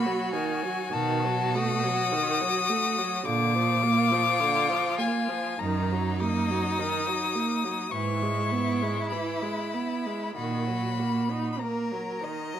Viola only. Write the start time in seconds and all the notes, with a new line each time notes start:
0.06 F#3
0.33 D#3
0.63 F#3
0.93 D#3
1.25 F#3
1.55 A3
1.84 F#3
2.13 D#3
2.41 F#3
2.69 A3
2.98 F#3
3.26 D3
3.55 F3
3.83 A#3
4.12 F3
4.40 D3
4.70 F3
4.99 A#3
5.28 F3
5.60 D#3
5.91 F#3
6.21 A#3
6.50 F#3
6.79 D#3
7.07 F#3
7.35 A#3
7.64 F#3
7.93 E3
8.22 G#3
8.52 B3
8.82 G#3
9.12 E3
9.42 G#3
9.74 B3
10.06 G#3
10.36 D#3
10.68 F#3
10.99 A#3
11.31 D#4
11.60 A#3
11.92 F#3
12.23 D#3
12.54 F#3